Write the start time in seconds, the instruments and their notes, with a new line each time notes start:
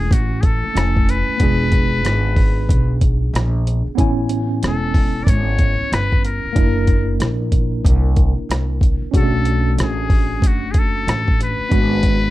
Already playing: tine electric piano A3 C#4 E4 G#5, muted trumpet G#4
0.11 upright bass A1, muted trumpet F#4, kick, closed hi-hat
0.41 muted trumpet G#4 A4, kick, closed hi-hat
0.64 muted upright bass stroke
0.74 upright bass F1, tine electric piano A3 C#4 E4 G#5, cross-stick, closed hi-hat
0.97 kick
1.09 muted trumpet B4, closed hi-hat
1.29 muted upright bass stroke
1.38 upright bass E1, tine electric piano B3 D4 F4, kick, closed hi-hat
1.43 tine electric piano G#4
1.72 kick, closed hi-hat
2.05 upright bass G#1, cross-stick, closed hi-hat
2.36 kick, open hi-hat
2.69 upright bass B1, kick, closed hi-hat
3.01 kick, closed hi-hat
3.33 upright bass A#1, cross-stick, closed hi-hat
3.67 closed hi-hat
3.87 muted upright bass stroke
3.95 upright bass A1, tine electric piano B3 C#4 E4, kick, closed hi-hat
4.00 tine electric piano G#5
4.29 closed hi-hat
4.63 upright bass E1, muted trumpet A4, cross-stick, closed hi-hat
4.94 kick, open hi-hat
5.24 upright bass G#1, muted trumpet D5, kick, closed hi-hat
5.29 muted trumpet C#5
5.59 kick, closed hi-hat
5.81 muted upright bass stroke
5.92 upright bass G1, muted trumpet B4, cross-stick, closed hi-hat
6.12 kick
6.25 muted trumpet A#4, closed hi-hat
6.45 muted upright bass stroke
6.53 upright bass F#1, tine electric piano A#3 D4 E4, kick, closed hi-hat
6.58 tine electric piano A#4
6.87 kick, closed hi-hat
7.20 upright bass A#1, cross-stick, closed hi-hat
7.52 kick, closed hi-hat
7.85 upright bass C2, kick, closed hi-hat
8.16 kick, closed hi-hat
8.38 muted upright bass stroke
8.49 upright bass C2, cross-stick, closed hi-hat
8.81 kick, closed hi-hat
9.02 muted upright bass stroke
9.11 upright bass B1, tine electric piano C#4 D4 F#4, kick, closed hi-hat
9.16 tine electric piano G#4, muted trumpet A4
9.23 tine electric piano A3
9.45 closed hi-hat
9.78 upright bass A1, cross-stick, closed hi-hat
9.83 muted trumpet G#4
10.10 kick, open hi-hat
10.42 upright bass F#1, kick, closed hi-hat
10.47 muted trumpet F#4
10.71 muted trumpet G#4, kick, closed hi-hat
10.79 muted trumpet A4
11.07 upright bass A1, cross-stick, closed hi-hat
11.28 kick
11.41 muted trumpet B4, closed hi-hat
11.60 muted upright bass stroke
11.69 upright bass G#1, tine electric piano B3 D4 F#4, kick, closed hi-hat
11.74 tine electric piano B4
12.03 kick, closed hi-hat